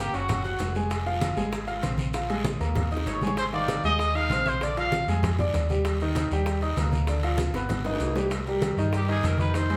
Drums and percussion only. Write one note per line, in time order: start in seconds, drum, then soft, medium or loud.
0.14 high conga soft
0.14 high timbale medium
0.14 short guiro medium
0.14 maracas soft
0.28 high bongo medium
0.28 high conga soft
0.28 low conga medium
0.28 high timbale medium
0.28 long guiro medium
0.28 maracas medium
0.44 high bongo soft
0.44 high conga soft
0.44 maracas soft
0.59 high bongo soft
0.59 low bongo medium
0.59 high conga soft
0.59 high timbale medium
0.59 low timbale medium
0.59 short guiro medium
0.59 maracas medium
0.75 high bongo soft
0.75 short guiro medium
0.75 maracas soft
0.90 high bongo medium
0.90 high conga soft
0.90 high timbale medium
0.90 long guiro medium
0.90 maracas medium
1.06 high bongo soft
1.06 high conga soft
1.06 maracas soft
1.21 high bongo medium
1.21 high conga medium
1.21 high timbale medium
1.21 short guiro medium
1.21 maracas medium
1.37 high conga soft
1.37 short guiro medium
1.37 maracas soft
1.52 high bongo medium
1.52 high conga soft
1.52 high timbale medium
1.52 long guiro medium
1.52 maracas medium
1.67 high bongo soft
1.67 high conga soft
1.67 high timbale medium
1.67 maracas soft
1.83 high bongo soft
1.83 low bongo medium
1.83 high conga medium
1.83 high timbale loud
1.83 short guiro medium
1.83 maracas medium
1.98 high bongo soft
1.98 high conga medium
1.98 short guiro medium
1.98 maracas soft
2.13 high bongo medium
2.13 high conga soft
2.13 high timbale medium
2.13 long guiro medium
2.13 maracas medium
2.29 high bongo soft
2.29 high conga soft
2.29 high timbale loud
2.29 maracas soft
2.45 high bongo medium
2.45 high conga loud
2.45 short guiro medium
2.45 maracas medium
2.60 high conga soft
2.60 high timbale medium
2.60 short guiro medium
2.60 maracas soft
2.75 high bongo loud
2.75 high conga soft
2.75 low conga medium
2.75 high timbale medium
2.75 long guiro medium
2.75 maracas medium
2.91 high conga soft
2.91 maracas soft
2.97 high bongo medium
3.06 low bongo medium
3.06 high conga soft
3.06 high timbale medium
3.06 low timbale medium
3.06 short guiro medium
3.06 maracas medium
3.21 high conga medium
3.21 short guiro medium
3.21 maracas soft
3.27 low bongo medium
3.37 high bongo medium
3.37 high conga soft
3.37 high timbale medium
3.37 long guiro medium
3.37 maracas medium
3.53 high bongo soft
3.53 high conga soft
3.53 maracas soft
3.68 high bongo medium
3.68 high conga medium
3.68 high timbale medium
3.68 short guiro medium
3.68 maracas medium
3.84 high conga soft
3.84 short guiro medium
3.84 maracas soft
3.99 high bongo medium
3.99 high conga soft
3.99 high timbale medium
3.99 long guiro medium
3.99 maracas medium
4.14 high bongo soft
4.14 high conga soft
4.14 high timbale medium
4.14 maracas soft
4.30 high bongo soft
4.30 low bongo medium
4.30 high conga medium
4.30 high timbale medium
4.30 short guiro medium
4.30 maracas medium
4.46 high bongo soft
4.46 high conga medium
4.46 short guiro medium
4.46 maracas soft
4.61 high bongo medium
4.61 high conga soft
4.61 high timbale medium
4.61 long guiro medium
4.61 maracas medium
4.76 high bongo soft
4.76 high conga soft
4.76 high timbale loud
4.76 maracas soft
4.92 high bongo medium
4.92 high conga medium
4.92 short guiro medium
4.92 maracas medium
5.08 high conga soft
5.08 high timbale medium
5.08 short guiro medium
5.08 maracas soft
5.23 high bongo medium
5.23 high conga soft
5.23 low conga medium
5.23 high timbale medium
5.23 long guiro medium
5.23 maracas medium
5.39 high bongo soft
5.39 high conga soft
5.39 low conga medium
5.39 maracas soft
5.54 high bongo soft
5.54 low bongo medium
5.54 high conga soft
5.54 high timbale medium
5.54 short guiro medium
5.54 maracas medium
5.69 high bongo soft
5.69 high conga medium
5.69 short guiro medium
5.69 maracas soft
5.85 high bongo medium
5.85 high conga soft
5.85 high timbale medium
5.85 long guiro medium
5.85 maracas medium
6.00 high bongo soft
6.00 high conga soft
6.00 maracas soft
6.15 high bongo medium
6.15 high conga medium
6.15 high timbale loud
6.15 short guiro medium
6.15 maracas medium
6.31 high conga soft
6.31 short guiro medium
6.31 maracas soft
6.46 high bongo medium
6.46 high conga soft
6.46 high timbale medium
6.46 long guiro medium
6.46 maracas medium
6.61 high bongo soft
6.61 high conga soft
6.61 high timbale medium
6.61 maracas soft
6.77 high bongo soft
6.77 low bongo medium
6.77 high conga medium
6.77 high timbale loud
6.77 low timbale medium
6.77 short guiro medium
6.77 maracas medium
6.92 high bongo soft
6.92 high conga medium
6.92 short guiro medium
6.92 maracas soft
7.07 high bongo medium
7.07 high conga soft
7.07 high timbale medium
7.07 long guiro medium
7.07 maracas medium
7.23 high bongo soft
7.23 high conga soft
7.23 high timbale loud
7.23 maracas soft
7.38 high bongo medium
7.38 high conga medium
7.38 short guiro medium
7.38 maracas medium
7.53 high bongo medium
7.53 high conga soft
7.53 high timbale medium
7.53 short guiro medium
7.53 maracas soft
7.69 low bongo medium
7.69 high conga soft
7.69 low conga medium
7.69 high timbale medium
7.69 long guiro medium
7.69 maracas medium
7.84 low bongo medium
7.84 high conga soft
7.84 high timbale medium
7.84 maracas soft
7.95 low timbale medium
8.00 high conga soft
8.00 short guiro medium
8.00 maracas medium
8.06 low timbale medium
8.16 low bongo loud
8.16 low timbale medium
8.16 short guiro medium
8.16 maracas soft
8.31 high bongo medium
8.31 high conga soft
8.31 high timbale medium
8.31 long guiro medium
8.31 maracas medium
8.46 high bongo soft
8.46 high conga soft
8.46 maracas soft
8.62 high bongo medium
8.62 high conga medium
8.62 high timbale medium
8.62 short guiro medium
8.62 maracas medium
8.77 high conga soft
8.77 short guiro medium
8.77 maracas soft
8.93 high bongo medium
8.93 high conga soft
8.93 high timbale medium
8.93 long guiro medium
8.93 maracas medium
9.08 high bongo soft
9.08 high conga soft
9.08 high timbale medium
9.08 maracas soft
9.23 high bongo soft
9.23 low bongo medium
9.23 high conga medium
9.23 high timbale medium
9.23 low timbale medium
9.23 short guiro medium
9.23 maracas medium
9.38 high bongo soft
9.38 high conga medium
9.38 short guiro medium
9.38 maracas soft
9.54 high bongo medium
9.54 high conga soft
9.54 high timbale medium
9.54 long guiro medium
9.54 maracas medium
9.69 high bongo soft
9.69 high conga soft
9.69 high timbale medium
9.69 maracas soft